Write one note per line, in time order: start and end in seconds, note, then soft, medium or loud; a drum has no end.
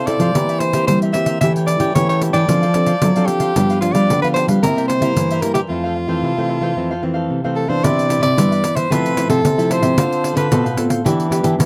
0.00 0.15 C3 medium
0.00 0.32 C3 medium
0.07 0.30 C4 soft
0.07 0.20 E4 soft
0.07 0.30 E4 soft
0.07 0.30 A4 medium
0.07 0.20 A4 soft
0.07 0.20 C5 soft
0.07 0.61 D5 medium
0.07 0.20 F5 soft
0.07 pandeiro medium
0.19 0.31 F3 medium
0.19 0.34 A4 soft
0.19 0.34 C5 medium
0.19 0.33 F5 medium
0.19 pandeiro soft
0.34 0.80 E3 medium
0.34 0.86 E3 soft
0.34 0.70 A#3 soft
0.34 0.71 C4 soft
0.34 0.47 E4 soft
0.34 0.71 G4 medium
0.34 0.48 A#4 soft
0.34 0.48 C5 soft
0.34 0.48 E5 soft
0.34 pandeiro medium
0.49 0.60 A#4 soft
0.49 0.60 C5 soft
0.49 0.60 E5 medium
0.49 pandeiro soft
0.59 0.87 C5 medium
0.59 muted cavaquinho stroke soft
0.59 pandeiro medium
0.73 1.10 A#3 medium
0.73 1.10 C4 medium
0.73 1.10 G4 medium
0.73 1.00 A#4 soft
0.73 1.00 C5 medium
0.73 1.00 E5 soft
0.73 pandeiro medium
0.87 1.39 E3 medium
0.87 1.11 G3 medium
0.87 1.00 C5 medium
0.87 pandeiro medium
1.02 1.26 A#4 soft
1.02 1.26 C5 medium
1.02 1.25 E5 medium
1.02 pandeiro soft
1.13 1.37 A#3 medium
1.13 1.37 C4 soft
1.13 1.37 G4 medium
1.13 1.39 E5 medium
1.13 pandeiro medium
1.26 1.40 A#4 soft
1.26 1.40 C5 medium
1.26 1.39 E5 medium
1.26 pandeiro medium
1.41 1.76 E3 medium
1.41 1.93 E3 medium
1.41 1.78 A3 soft
1.41 1.78 C#4 medium
1.41 1.54 G4 soft
1.41 1.78 G4 medium
1.41 1.55 A4 soft
1.41 1.55 C#5 soft
1.41 1.53 E5 medium
1.41 1.55 G5 medium
1.41 pandeiro medium
1.56 1.67 A4 soft
1.56 1.68 C#5 medium
1.56 1.68 G5 medium
1.56 pandeiro soft
1.67 1.92 D5 medium
1.67 muted cavaquinho stroke soft
1.67 pandeiro medium
1.80 1.92 E3 medium
1.80 1.90 A3 medium
1.80 1.90 C#4 medium
1.80 1.90 G4 medium
1.80 1.94 A4 medium
1.80 1.93 C#5 medium
1.80 1.93 G5 medium
1.80 pandeiro soft
1.95 2.46 E3 soft
1.95 2.30 E3 medium
1.95 2.45 A3 soft
1.95 2.45 C#4 soft
1.95 2.08 G4 soft
1.95 2.45 G4 soft
1.95 2.08 A4 soft
1.95 2.07 C#5 medium
1.95 2.08 C#5 soft
1.95 2.08 G5 soft
1.95 pandeiro medium
2.09 2.20 A4 medium
2.09 2.21 C#5 medium
2.09 2.21 G5 medium
2.09 pandeiro soft
2.21 2.34 G4 soft
2.21 2.34 A4 soft
2.21 2.32 C#5 soft
2.21 2.32 G5 soft
2.21 pandeiro medium
2.33 2.46 E3 medium
2.33 2.47 A4 medium
2.33 2.47 C#5 medium
2.33 3.28 D5 medium
2.33 2.46 G5 medium
2.33 pandeiro soft
2.48 2.94 F3 medium
2.48 3.00 F3 soft
2.48 2.65 C4 soft
2.48 2.61 D4 soft
2.48 2.65 D4 medium
2.48 2.61 A4 soft
2.48 2.65 A4 soft
2.48 2.61 C5 soft
2.48 2.61 F5 soft
2.48 pandeiro medium
2.62 2.73 A4 soft
2.62 2.73 C5 medium
2.62 2.74 F5 medium
2.62 pandeiro soft
2.74 2.91 C4 medium
2.74 2.91 D4 soft
2.74 2.91 A4 soft
2.74 muted cavaquinho stroke soft
2.74 pandeiro medium
2.86 3.14 A4 medium
2.86 3.14 C5 medium
2.86 3.13 F5 medium
2.86 pandeiro soft
3.02 3.53 F3 medium
3.02 3.25 F#3 medium
3.02 3.10 C4 soft
3.02 3.11 D4 soft
3.02 3.11 A4 medium
3.02 pandeiro medium
3.16 3.52 C4 medium
3.16 3.52 D4 medium
3.16 3.52 A4 medium
3.16 3.41 A4 soft
3.16 3.40 C5 medium
3.16 3.39 F5 medium
3.16 pandeiro soft
3.26 3.80 G4 medium
3.26 pandeiro medium
3.40 3.55 A4 soft
3.40 3.54 C5 medium
3.40 3.54 F5 medium
3.40 pandeiro soft
3.56 4.07 G2 medium
3.56 3.79 F3 medium
3.56 3.90 G3 medium
3.56 3.79 B3 medium
3.56 3.68 D4 soft
3.56 3.79 D4 medium
3.56 3.68 G4 soft
3.56 3.69 B4 soft
3.56 3.69 F5 medium
3.56 pandeiro medium
3.70 3.81 G4 soft
3.70 3.81 B4 medium
3.70 3.82 F5 medium
3.70 pandeiro soft
3.81 4.18 F3 soft
3.81 4.18 B3 soft
3.81 4.18 D4 soft
3.81 3.94 F4 medium
3.81 muted cavaquinho stroke soft
3.81 pandeiro medium
3.92 4.06 G3 medium
3.92 4.08 G4 soft
3.92 4.08 B4 medium
3.92 4.21 D5 medium
3.92 4.07 F5 medium
3.92 pandeiro medium
4.09 4.60 D3 soft
4.09 4.44 D3 medium
4.09 4.22 D4 soft
4.09 4.22 G4 soft
4.09 4.23 B4 soft
4.09 4.23 F5 medium
4.09 pandeiro medium
4.22 4.59 F3 medium
4.22 4.59 B3 medium
4.22 4.59 D4 medium
4.22 4.35 G4 soft
4.22 4.28 B4 medium
4.22 4.36 B4 medium
4.22 4.36 F5 medium
4.22 pandeiro soft
4.34 4.48 D4 soft
4.34 4.49 G4 soft
4.34 4.48 B4 soft
4.34 4.46 C5 medium
4.34 pandeiro medium
4.38 4.47 F5 soft
4.47 4.60 G3 medium
4.47 4.62 G4 medium
4.47 4.62 B4 medium
4.47 4.61 F5 medium
4.47 pandeiro soft
4.63 5.14 C3 soft
4.63 5.08 C3 medium
4.63 4.99 G3 soft
4.63 4.99 A#3 soft
4.63 4.75 E4 soft
4.63 4.99 E4 medium
4.63 4.87 A#4 medium
4.63 4.76 A#4 soft
4.63 4.76 C5 soft
4.63 4.76 E5 soft
4.63 pandeiro medium
4.77 4.89 A#4 medium
4.77 4.89 C5 medium
4.77 4.89 E5 medium
4.77 pandeiro soft
4.88 5.43 C5 medium
4.88 muted cavaquinho stroke soft
4.88 pandeiro medium
5.01 5.38 G3 medium
5.01 5.38 A#3 medium
5.01 5.38 E4 medium
5.01 5.29 A#4 medium
5.01 5.29 C5 medium
5.01 5.28 E5 medium
5.01 pandeiro medium
5.16 5.68 G2 soft
5.16 5.39 E3 medium
5.16 pandeiro medium
5.31 5.55 A#4 soft
5.31 5.54 C5 medium
5.31 5.53 E5 medium
5.31 pandeiro soft
5.41 5.59 G3 medium
5.41 5.59 A#3 medium
5.41 5.59 E4 medium
5.41 5.53 A#4 medium
5.41 pandeiro medium
5.54 5.61 G4 medium
5.54 5.69 A#4 medium
5.54 5.68 C5 medium
5.54 5.68 E5 medium
5.54 pandeiro medium
5.69 6.21 F2 medium
5.69 6.06 A3 soft
5.69 6.06 C4 medium
5.69 5.83 E4 soft
5.69 7.26 F4 medium
5.69 5.83 A4 soft
5.69 5.83 C5 soft
5.69 5.82 F5 soft
5.84 5.94 A4 soft
5.84 5.95 C5 medium
5.84 5.95 F5 medium
5.96 muted cavaquinho stroke soft
6.08 6.32 E3 medium
6.08 6.32 A3 medium
6.08 6.32 C4 medium
6.08 6.22 A4 soft
6.08 6.22 C5 medium
6.08 6.21 F5 medium
6.22 6.74 C3 medium
6.22 6.36 E4 soft
6.22 6.36 A4 soft
6.22 6.36 C5 soft
6.22 6.36 F5 soft
6.37 6.60 E3 medium
6.37 6.60 A3 medium
6.37 6.60 C4 medium
6.37 6.48 A4 medium
6.37 6.49 C5 medium
6.37 6.49 F5 medium
6.48 6.62 E4 soft
6.48 6.62 A4 soft
6.48 6.61 C5 soft
6.48 6.60 F5 soft
6.61 6.72 E3 medium
6.61 6.72 A3 medium
6.61 6.72 C4 medium
6.61 6.75 A4 soft
6.61 6.76 C5 medium
6.61 6.75 F5 medium
6.76 7.28 F2 soft
6.76 6.93 E3 soft
6.76 6.93 A3 soft
6.76 6.93 C4 medium
6.76 6.89 E4 soft
6.76 6.89 A4 soft
6.76 6.90 C5 soft
6.76 6.89 F5 soft
6.91 7.01 A4 medium
6.91 7.02 C5 medium
6.91 7.02 F5 medium
7.03 7.39 E3 soft
7.03 7.39 A3 soft
7.03 7.40 C4 medium
7.03 muted cavaquinho stroke soft
7.14 7.42 A4 medium
7.14 7.42 C5 medium
7.14 7.41 F5 medium
7.31 7.82 C3 medium
7.44 7.67 E3 medium
7.44 7.67 A3 medium
7.44 7.67 C4 medium
7.44 7.68 A4 soft
7.44 7.68 C5 medium
7.44 7.67 F5 medium
7.56 7.70 A4 medium
7.68 8.19 E3 soft
7.68 8.19 B3 medium
7.68 8.20 D4 medium
7.68 7.83 A4 soft
7.68 7.86 C5 medium
7.68 7.82 C5 soft
7.68 7.82 F5 medium
7.83 8.35 C3 medium
7.83 8.18 C3 medium
7.83 8.08 E4 medium
7.83 8.09 B4 medium
7.83 8.09 C5 medium
7.83 8.22 D5 loud
7.83 8.09 E5 medium
7.83 pandeiro medium
7.99 pandeiro soft
8.09 8.20 E4 soft
8.09 8.21 B4 soft
8.09 8.20 C5 soft
8.09 8.21 E5 medium
8.09 pandeiro medium
8.21 8.35 C3 medium
8.21 8.32 E4 medium
8.21 8.32 B4 medium
8.21 8.32 C5 medium
8.21 8.78 D5 medium
8.21 8.32 E5 medium
8.21 pandeiro medium
8.36 8.89 G2 soft
8.36 8.87 E3 medium
8.36 8.60 G3 medium
8.36 8.87 B3 soft
8.36 8.87 D4 medium
8.36 8.49 E4 medium
8.36 8.50 B4 medium
8.36 8.50 C5 medium
8.36 8.50 E5 medium
8.36 pandeiro medium
8.51 8.75 B4 soft
8.51 8.76 C5 soft
8.51 8.74 E5 medium
8.51 pandeiro soft
8.64 pandeiro medium
8.76 8.90 B4 soft
8.76 8.93 C5 medium
8.76 8.90 C5 soft
8.76 8.89 E5 soft
8.76 pandeiro medium
8.90 9.42 C3 soft
8.90 9.25 C3 medium
8.90 9.13 F3 soft
8.90 9.14 A3 medium
8.90 9.14 E4 medium
8.90 9.16 F4 medium
8.90 9.16 A4 medium
8.90 9.29 B4 medium
8.90 9.17 C5 medium
8.90 9.17 E5 medium
8.90 pandeiro medium
9.06 pandeiro soft
9.17 9.43 F3 medium
9.17 9.43 A3 soft
9.17 9.43 E4 medium
9.17 9.28 F4 soft
9.17 9.29 A4 soft
9.17 9.29 C5 medium
9.17 9.29 E5 medium
9.17 pandeiro medium
9.29 9.42 C3 medium
9.29 9.39 F4 medium
9.29 9.40 A4 medium
9.29 9.73 A4 medium
9.29 9.40 C5 medium
9.29 9.40 E5 medium
9.29 pandeiro medium
9.44 9.95 C3 medium
9.44 9.79 C3 medium
9.44 pandeiro medium
9.58 9.94 F3 medium
9.58 9.94 A3 medium
9.58 9.94 E4 medium
9.58 9.69 A4 soft
9.58 9.70 C5 soft
9.58 9.70 E5 soft
9.58 pandeiro soft
9.70 9.83 F4 medium
9.70 9.82 A4 medium
9.70 9.82 C5 medium
9.70 10.37 C5 medium
9.70 9.81 E5 medium
9.70 pandeiro medium
9.82 9.95 C3 medium
9.82 9.97 A4 soft
9.82 9.96 C5 medium
9.82 9.96 E5 soft
9.82 pandeiro medium
9.97 10.49 D3 medium
9.97 10.32 D3 medium
9.97 10.47 C4 medium
9.97 10.23 D4 medium
9.97 10.48 F4 medium
9.97 10.24 A4 medium
9.97 10.48 A4 medium
9.97 10.24 C5 medium
9.97 10.24 F5 medium
9.97 pandeiro medium
10.13 pandeiro soft
10.24 10.34 D4 soft
10.24 10.34 A4 medium
10.24 10.35 C5 medium
10.24 10.36 F5 medium
10.24 pandeiro medium
10.35 10.49 D3 medium
10.35 10.46 D4 medium
10.35 10.46 A4 medium
10.35 10.88 B4 medium
10.35 10.46 C5 medium
10.35 10.47 F5 medium
10.35 pandeiro medium
10.51 11.03 A2 medium
10.51 10.75 B2 medium
10.51 10.68 C4 medium
10.51 10.64 D4 medium
10.51 10.68 F4 soft
10.51 10.64 A4 medium
10.51 10.68 A4 medium
10.51 10.64 C5 medium
10.51 10.63 F5 medium
10.51 pandeiro medium
10.65 10.89 A4 soft
10.65 10.89 C5 soft
10.65 10.88 F5 soft
10.65 pandeiro soft
10.77 11.01 C4 medium
10.77 11.01 F4 medium
10.77 11.01 A4 medium
10.77 pandeiro medium
10.89 11.04 A4 soft
10.89 11.03 C5 soft
10.89 11.03 F5 soft
10.89 pandeiro medium
11.05 11.56 E3 medium
11.05 11.40 E3 medium
11.05 11.28 B3 medium
11.05 11.29 D4 medium
11.05 11.28 D4 medium
11.05 11.29 G4 medium
11.05 11.30 B4 medium
11.05 11.30 E5 medium
11.05 pandeiro medium
11.20 pandeiro soft
11.30 11.66 B3 medium
11.30 11.42 D4 soft
11.30 11.66 D4 medium
11.30 11.43 G4 soft
11.30 11.66 G4 medium
11.30 11.43 B4 medium
11.30 11.43 E5 medium
11.30 pandeiro medium
11.43 11.56 E3 loud
11.43 11.54 D4 medium
11.43 11.54 G4 medium
11.43 11.54 B4 medium
11.43 11.54 E5 medium
11.43 pandeiro medium
11.59 11.66 B2 medium
11.59 11.66 E3 medium
11.59 pandeiro medium